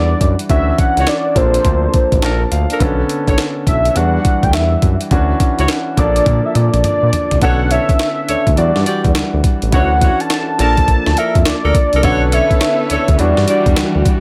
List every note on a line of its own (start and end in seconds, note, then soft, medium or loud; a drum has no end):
0.00 0.14 E2 loud
0.00 0.47 E3 medium
0.00 0.47 G3 medium
0.00 0.47 D4 medium
0.00 0.48 F#4 medium
0.00 0.36 D5 loud
0.21 0.35 F#2 loud
0.21 kick medium
0.21 closed hi-hat medium
0.39 closed hi-hat medium
0.49 0.72 D2 loud
0.49 1.36 E3 medium
0.49 1.36 C#4 medium
0.49 1.35 D4 medium
0.49 1.36 F#4 medium
0.49 0.80 E5 loud
0.49 kick loud
0.49 closed hi-hat medium
0.78 1.09 F#5 loud
0.78 kick loud
0.78 closed hi-hat medium
0.97 1.05 C#2 loud
0.97 1.08 E4 medium
0.97 1.08 F#4 medium
0.97 1.08 C#5 medium
0.97 closed hi-hat soft
1.07 1.38 D5 loud
1.07 snare loud
1.07 clap medium
1.07 closed hi-hat medium
1.35 1.58 A#1 loud
1.35 2.77 F3 medium
1.35 2.77 A#3 medium
1.35 2.78 D4 medium
1.35 2.78 A4 medium
1.35 2.52 C5 loud
1.35 kick medium
1.35 closed hi-hat medium
1.54 closed hi-hat medium
1.65 1.87 D2 loud
1.65 kick medium
1.65 closed hi-hat medium
1.94 kick loud
1.94 closed hi-hat medium
2.12 2.20 A1 medium
2.12 kick medium
2.12 closed hi-hat soft
2.22 2.45 A#1 loud
2.22 2.41 D4 medium
2.22 2.41 A4 medium
2.22 2.41 A#4 medium
2.22 2.50 A5 medium
2.22 snare loud
2.22 clap loud
2.22 closed hi-hat medium
2.51 2.66 D2 loud
2.51 2.78 F5 medium
2.51 closed hi-hat medium
2.70 2.81 D4 medium
2.70 2.81 A4 medium
2.70 2.81 A#4 medium
2.70 closed hi-hat soft
2.79 3.03 B1 loud
2.79 3.93 D3 medium
2.79 3.93 B3 medium
2.79 3.94 C#4 medium
2.79 3.94 A4 medium
2.79 kick loud
2.79 closed hi-hat medium
3.09 closed hi-hat medium
3.27 3.36 A1 medium
3.27 3.38 D4 medium
3.27 3.38 A4 medium
3.27 3.39 C#5 medium
3.27 kick medium
3.27 closed hi-hat soft
3.38 snare loud
3.38 clap medium
3.38 closed hi-hat medium
3.67 3.89 B1 medium
3.67 3.98 E5 loud
3.67 kick loud
3.67 closed hi-hat medium
3.85 closed hi-hat medium
3.95 4.18 E2 loud
3.95 5.08 E3 medium
3.95 5.09 G3 medium
3.95 5.09 D4 medium
3.95 5.10 F#4 medium
3.95 4.45 F#5 loud
3.95 closed hi-hat medium
4.25 kick loud
4.25 closed hi-hat medium
4.43 4.55 D2 medium
4.43 4.55 G5 loud
4.43 kick medium
4.43 closed hi-hat soft
4.53 4.76 E2 loud
4.53 5.01 E5 medium
4.53 snare loud
4.53 clap medium
4.53 closed hi-hat medium
4.82 4.97 F#2 medium
4.82 kick loud
4.82 closed hi-hat medium
5.01 closed hi-hat medium
5.11 5.33 D2 loud
5.11 5.97 E3 medium
5.11 5.98 C#4 medium
5.11 5.97 D4 medium
5.11 5.98 F#4 medium
5.11 kick loud
5.11 closed hi-hat medium
5.40 kick loud
5.40 closed hi-hat medium
5.58 5.67 C#2 medium
5.58 5.69 E4 medium
5.58 5.69 F#4 medium
5.58 5.69 C#5 medium
5.58 closed hi-hat soft
5.68 snare loud
5.68 clap medium
5.68 closed hi-hat medium
5.97 6.20 A#1 medium
5.97 7.38 F3 medium
5.97 7.39 A#3 medium
5.97 7.39 D4 medium
5.97 7.40 A4 medium
5.97 6.47 D5 loud
5.97 kick medium
5.97 closed hi-hat medium
6.16 closed hi-hat medium
6.26 6.41 A#2 loud
6.26 kick medium
6.26 closed hi-hat medium
6.26 high tom medium
6.45 6.57 E5 medium
6.55 6.70 A#2 loud
6.55 6.84 D5 loud
6.55 closed hi-hat medium
6.55 mid tom medium
6.74 6.82 A#1 medium
6.74 closed hi-hat soft
6.74 mid tom medium
6.84 7.38 D5 loud
6.84 closed hi-hat medium
6.84 mid tom medium
7.03 7.11 A#2 loud
7.13 closed hi-hat medium
7.13 floor tom medium
7.31 7.40 C2 medium
7.31 closed hi-hat medium
7.31 floor tom medium
7.41 7.79 B1 loud
7.41 8.54 D3 medium
7.41 8.55 B3 medium
7.41 8.55 C#4 medium
7.41 7.60 D4 medium
7.41 7.61 A4 medium
7.41 8.55 A4 medium
7.41 7.61 C#5 loud
7.41 7.72 F#5 loud
7.41 kick loud
7.41 closed hi-hat medium
7.70 7.89 D4 medium
7.70 7.89 A4 medium
7.70 7.89 C#5 medium
7.70 8.57 E5 loud
7.70 closed hi-hat medium
7.89 kick medium
7.89 closed hi-hat soft
7.99 snare loud
7.99 clap medium
7.99 closed hi-hat medium
8.28 8.36 D2 soft
8.28 8.47 D4 medium
8.28 8.47 A4 medium
8.28 8.47 C#5 medium
8.28 closed hi-hat medium
8.47 8.55 D2 medium
8.47 kick loud
8.47 closed hi-hat medium
8.56 8.72 E2 loud
8.56 9.70 E3 medium
8.56 8.65 F#3 soft
8.56 9.70 D4 medium
8.56 9.71 F#4 medium
8.56 9.11 D5 medium
8.56 closed hi-hat medium
8.63 9.73 G3 medium
8.76 8.84 G2 medium
8.76 snare medium
8.86 9.05 F#4 medium
8.86 9.05 G4 medium
8.86 9.05 D5 medium
8.86 closed hi-hat medium
9.04 9.13 E2 medium
9.04 kick medium
9.04 closed hi-hat soft
9.15 9.22 D2 medium
9.15 snare loud
9.15 clap loud
9.15 closed hi-hat medium
9.33 9.41 D2 medium
9.44 kick loud
9.44 closed hi-hat medium
9.62 9.74 A1 medium
9.62 closed hi-hat medium
9.72 10.09 D2 loud
9.72 10.59 E3 medium
9.72 10.59 C#4 medium
9.72 10.58 D4 medium
9.72 9.91 E4 loud
9.72 9.91 F#4 medium
9.72 10.59 F#4 medium
9.72 9.91 C#5 loud
9.72 10.22 F#5 loud
9.72 kick loud
9.72 closed hi-hat medium
10.01 10.20 E4 medium
10.01 10.20 F#4 medium
10.01 10.20 C#5 medium
10.01 kick loud
10.01 closed hi-hat medium
10.20 10.59 A5 loud
10.20 closed hi-hat soft
10.30 snare loud
10.30 clap medium
10.30 closed hi-hat medium
10.58 10.96 A#1 loud
10.58 12.00 F3 medium
10.58 12.00 A#3 medium
10.58 10.78 D4 medium
10.58 12.01 D4 medium
10.58 10.78 A4 medium
10.58 12.01 A4 medium
10.58 10.78 A#4 medium
10.58 11.19 A5 loud
10.58 closed hi-hat medium
10.77 kick medium
10.77 closed hi-hat medium
10.88 kick medium
10.88 closed hi-hat medium
11.06 11.15 D2 medium
11.06 snare medium
11.17 11.35 D4 medium
11.17 11.36 A4 medium
11.17 11.36 A#4 medium
11.17 11.46 E5 loud
11.17 closed hi-hat medium
11.35 11.43 F2 medium
11.35 kick medium
11.35 closed hi-hat soft
11.45 11.53 D2 medium
11.45 12.06 D5 medium
11.45 snare loud
11.45 clap loud
11.45 closed hi-hat medium
11.64 11.72 D2 medium
11.64 11.75 D4 medium
11.64 11.75 A4 medium
11.64 11.75 A#4 medium
11.75 kick loud
11.75 closed hi-hat medium
11.93 12.01 C2 medium
11.93 12.02 D4 medium
11.93 12.02 A4 medium
11.93 12.04 A#4 medium
11.93 closed hi-hat medium
12.02 12.40 B1 loud
12.02 13.16 D3 medium
12.02 13.16 B3 medium
12.02 13.18 B3 medium
12.02 13.17 C#4 medium
12.02 12.22 D4 medium
12.02 12.22 A4 medium
12.02 13.18 A4 medium
12.02 13.17 A4 medium
12.02 13.18 B4 medium
12.02 13.18 C#5 medium
12.02 12.22 C#5 loud
12.02 12.35 F#5 loud
12.02 kick loud
12.02 closed hi-hat medium
12.32 12.51 D4 medium
12.32 12.51 A4 medium
12.32 12.51 C#5 medium
12.32 13.21 E5 loud
12.32 closed hi-hat medium
12.51 kick medium
12.51 closed hi-hat soft
12.61 snare loud
12.61 clap medium
12.61 closed hi-hat medium
12.90 12.97 D2 soft
12.90 13.09 D4 medium
12.90 13.09 A4 medium
12.90 13.09 C#5 medium
12.90 closed hi-hat medium
13.08 13.16 D2 medium
13.08 kick loud
13.08 closed hi-hat medium
13.18 13.33 E2 loud
13.18 14.20 E3 medium
13.18 14.20 G3 medium
13.18 14.20 D4 medium
13.18 14.20 F#4 medium
13.18 13.77 D5 medium
13.18 closed hi-hat medium
13.37 13.45 G2 medium
13.37 snare medium
13.47 13.66 F#4 medium
13.47 13.66 G4 medium
13.47 13.66 D5 medium
13.47 closed hi-hat medium
13.66 13.74 E2 medium
13.66 kick medium
13.66 closed hi-hat medium
13.76 13.84 D2 medium
13.76 snare loud
13.76 clap loud
13.76 closed hi-hat medium
13.95 14.03 D2 medium
14.05 kick loud
14.05 closed hi-hat medium